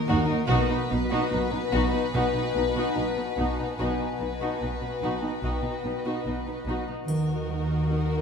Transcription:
0.00 0.46 F#4 medium
0.00 0.45 A#4 medium
0.00 0.46 A#4 soft
0.00 0.46 D#5 soft
0.07 0.16 D#2 medium
0.07 0.33 D#3 soft
0.07 0.28 D#4 medium
0.07 0.27 F#4 medium
0.26 0.37 D#2 medium
0.26 0.34 D#4 medium
0.31 0.39 D#4 medium
0.48 0.58 B1 medium
0.48 0.57 B2 medium
0.48 0.74 B2 medium
0.48 0.69 D#4 medium
0.48 0.68 F#4 medium
0.48 3.75 F#4 soft
0.48 3.75 B4 medium
0.48 3.77 B4 soft
0.48 3.75 D#5 medium
0.69 0.77 B2 soft
0.69 0.78 D#4 soft
0.69 0.80 D#4 soft
0.90 0.99 B1 soft
0.90 0.99 B2 soft
0.90 1.16 B2 medium
0.90 0.98 B3 soft
0.90 0.99 D#4 soft
1.09 1.19 B2 medium
1.09 1.31 D#4 medium
1.09 1.30 F#4 medium
1.28 1.40 B1 soft
1.28 1.39 B2 medium
1.28 1.40 D#4 soft
1.28 5.29 G#5 soft
1.33 1.57 B3 soft
1.51 1.59 B2 medium
1.51 1.59 B3 soft
1.51 1.61 D#4 soft
1.72 1.81 B1 medium
1.72 1.80 B2 soft
1.72 1.98 B2 medium
1.72 1.92 D#4 medium
1.72 1.92 F#4 medium
1.93 2.01 B2 soft
1.93 2.01 D#4 soft
1.93 2.02 D#4 soft
2.13 2.21 B1 medium
2.13 2.22 B2 medium
2.13 2.39 B2 soft
2.13 2.34 D#4 medium
2.13 2.34 F#4 medium
2.13 6.63 A5 soft
2.35 2.43 B2 soft
2.35 2.43 D#4 soft
2.35 2.44 D#4 soft
2.55 2.63 B1 soft
2.55 2.63 B2 soft
2.55 2.80 B2 soft
2.55 2.64 B3 soft
2.55 2.65 D#4 soft
2.75 2.83 B2 medium
2.75 2.96 D#4 soft
2.75 2.95 F#4 medium
2.95 3.04 B1 soft
2.95 3.22 B2 medium
2.95 3.05 B2 soft
2.95 3.03 D#4 soft
2.95 3.06 D#4 soft
3.17 3.25 B2 soft
3.17 3.25 B3 soft
3.17 3.26 D#4 soft
3.36 3.45 B1 soft
3.36 3.46 B2 soft
3.36 3.62 B2 soft
3.36 3.57 D#4 soft
3.36 3.56 F#4 soft
3.58 3.68 B2 soft
3.58 3.66 D#4 soft
3.58 3.67 D#4 soft
3.78 3.87 B1 soft
3.78 4.03 B2 soft
3.78 3.88 B2 soft
3.78 3.98 D#4 soft
3.78 7.04 F#4 soft
3.78 3.98 F#4 soft
3.78 7.03 B4 soft
3.78 6.84 B4 soft
3.78 7.04 D#5 soft
3.99 4.09 B2 soft
3.99 4.07 D#4 soft
3.99 4.08 D#4 soft
4.20 4.28 B1 soft
4.20 4.45 B2 soft
4.20 4.29 B2 soft
4.20 4.28 B3 soft
4.20 4.28 D#4 soft
4.40 4.48 B2 soft
4.40 4.60 D#4 soft
4.40 4.60 F#4 soft
4.60 4.68 B1 soft
4.60 4.69 B2 soft
4.60 4.86 B3 soft
4.60 4.68 D#4 soft
4.60 4.70 D#4 soft
4.81 4.89 B2 soft
4.81 4.90 B3 soft
4.81 4.90 D#4 soft
5.01 5.09 B1 soft
5.01 5.09 B2 soft
5.01 5.27 B2 soft
5.01 5.21 D#4 soft
5.01 5.22 F#4 soft
5.22 5.30 B2 soft
5.22 5.30 D#4 soft
5.22 5.31 D#4 soft
5.29 6.61 G5 soft
5.41 5.51 B1 soft
5.41 5.49 B2 soft
5.41 5.68 B2 soft
5.41 5.62 D#4 soft
5.41 5.62 F#4 soft
5.62 5.70 B2 soft
5.62 5.71 D#4 soft
5.62 5.73 D#4 soft
5.83 5.91 B1 soft
5.83 5.92 B2 soft
5.83 6.09 B2 soft
5.83 5.92 B3 soft
5.83 5.93 D#4 soft
6.05 6.13 B2 soft
6.05 6.25 D#4 soft
6.05 6.24 F#4 soft
6.25 6.33 B1 soft
6.25 6.50 B2 soft
6.25 6.35 B2 soft
6.25 6.34 D#4 soft
6.25 6.35 D#4 soft
6.46 6.55 B2 soft
6.46 6.56 B3 soft
6.46 6.54 D#4 soft
6.65 6.73 B1 soft
6.65 6.91 B2 soft
6.65 6.75 B2 soft
6.65 6.86 D#4 soft
6.65 6.87 F#4 soft
6.87 6.96 B2 soft
6.87 6.95 D#4 soft
6.87 6.97 D#4 soft
7.07 8.21 D#2 soft
7.07 7.32 D#3 medium
7.07 8.21 D#3 soft
7.07 8.21 D#4 soft
7.07 8.21 F#4 soft
7.07 8.21 A#4 medium
7.07 8.21 A#4 soft
7.07 8.21 D#5 soft
7.07 triangle soft
7.49 7.74 D#3 soft
7.90 8.14 D#4 soft

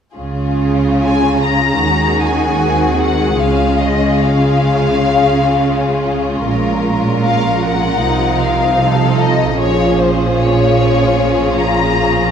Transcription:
0.15 1.79 C#2 soft
0.15 1.79 C#3 soft
0.15 6.45 G#3 soft
0.15 2.59 C#4 soft
0.15 1.79 F4 soft
0.15 6.44 G#4 soft
1.02 1.40 G#5 soft
1.44 2.25 A#5 medium
1.83 3.41 D#2 soft
1.83 3.41 D#3 soft
1.83 3.41 F#4 soft
2.24 3.02 G#5 soft
2.63 3.40 C4 soft
3.01 3.40 F#5 soft
3.39 6.45 C#2 soft
3.39 6.45 C#3 soft
3.39 8.02 C#4 soft
3.39 9.54 F4 soft
3.39 3.80 F5 soft
3.80 4.18 D#5 soft
4.19 6.12 F5 medium
6.48 7.99 A#1 soft
6.48 7.99 A#2 soft
6.48 7.99 G#3 soft
6.48 8.77 A#4 soft
7.24 7.60 F5 soft
7.65 8.43 F#5 soft
8.01 9.59 C2 soft
8.01 9.59 C3 soft
8.01 12.31 F3 soft
8.01 9.56 D#4 soft
8.42 9.20 F5 soft
8.82 9.59 A4 soft
9.20 9.59 D#5 medium
9.58 12.31 A#1 soft
9.58 12.31 A#2 soft
9.58 12.31 C#4 soft
9.58 12.31 F4 soft
9.58 12.31 G#4 soft
9.58 9.98 C#5 medium
9.99 10.37 C5 soft
10.39 11.60 C#5 medium
11.59 12.31 A#5 medium

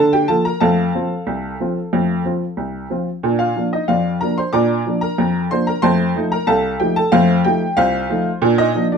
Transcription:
0.00 0.24 D3 medium
0.00 0.12 A4 medium
0.00 0.13 A5 loud
0.13 0.28 G4 medium
0.13 0.29 G5 loud
0.28 0.46 F3 medium
0.28 0.47 A#3 medium
0.28 0.47 F4 medium
0.28 0.44 A4 medium
0.28 0.44 A5 loud
0.45 0.61 A#4 medium
0.45 0.61 A#5 loud
0.60 0.89 F2 loud
0.60 0.80 A3 medium
0.60 2.54 A4 medium
0.60 2.54 F5 medium
0.60 2.18 A5 loud
0.94 1.12 F3 medium
0.94 1.13 C4 medium
0.94 1.13 F4 medium
1.27 1.54 C2 medium
1.60 1.78 F3 medium
1.60 1.78 C4 medium
1.60 1.79 F4 medium
1.93 2.20 F2 medium
1.93 2.12 A3 medium
2.25 2.43 F3 medium
2.25 2.43 C4 medium
2.25 2.44 F4 medium
2.57 2.85 C2 medium
2.90 3.08 F3 soft
2.90 3.08 C4 medium
2.90 3.09 F4 medium
3.23 3.51 A#2 medium
3.23 3.42 D4 medium
3.39 3.70 F4 medium
3.39 3.65 F5 medium
3.56 3.74 F3 soft
3.56 3.74 A#3 medium
3.56 3.74 D4 medium
3.73 3.88 D#4 medium
3.73 3.89 D#5 medium
3.88 4.16 F2 medium
3.88 4.19 F4 medium
3.88 4.19 D5 medium
3.88 4.14 F5 medium
4.21 4.39 F3 soft
4.21 4.39 A#3 medium
4.21 4.39 D4 medium
4.21 4.36 A#4 medium
4.21 4.37 A#5 loud
4.38 4.53 C5 medium
4.38 4.53 C6 loud
4.53 4.81 A#2 loud
4.53 4.73 D4 medium
4.53 4.99 D5 medium
4.53 4.99 A#5 medium
4.53 4.92 D6 loud
4.86 5.04 F3 medium
4.86 5.04 A#3 medium
4.86 5.05 D4 medium
5.01 5.48 A#4 medium
5.01 5.40 A#5 loud
5.18 5.46 F2 medium
5.51 5.69 F3 medium
5.51 5.69 A#3 medium
5.51 5.69 D4 medium
5.51 5.66 C5 medium
5.51 5.67 C6 loud
5.67 5.83 A#4 medium
5.67 5.83 A#5 loud
5.82 6.11 F2 loud
5.82 6.02 A3 medium
5.82 6.29 C5 medium
5.82 6.28 A5 medium
5.82 6.21 C6 loud
6.16 6.33 F3 medium
6.16 6.34 A3 medium
6.16 6.34 D#4 medium
6.32 6.47 A#4 medium
6.32 6.48 A#5 loud
6.47 6.75 C2 loud
6.47 6.78 A4 medium
6.47 6.78 F5 medium
6.47 6.73 A5 loud
6.80 6.98 F3 medium
6.80 6.98 A3 medium
6.80 6.98 D#4 medium
6.80 6.95 G4 medium
6.80 6.96 G5 loud
6.96 7.12 A4 medium
6.96 7.13 A5 loud
7.12 7.40 F2 loud
7.12 7.32 A3 medium
7.12 7.43 F4 medium
7.12 7.43 C5 medium
7.12 7.38 F5 loud
7.44 7.63 F3 medium
7.44 7.63 A3 medium
7.44 7.64 D#4 medium
7.44 7.76 G4 medium
7.44 7.76 G5 loud
7.77 8.05 C2 loud
7.77 8.39 F4 medium
7.77 8.39 C5 medium
7.77 8.29 F5 loud
8.10 8.28 F3 medium
8.10 8.28 A3 medium
8.10 8.28 D#4 medium
8.42 8.70 A#2 loud
8.42 8.61 D4 medium
8.58 8.89 D#4 medium
8.58 8.84 D#5 loud
8.75 8.93 F3 medium
8.75 8.94 A#3 medium
8.75 8.92 D4 medium
8.92 8.98 D4 medium
8.92 8.98 D5 medium

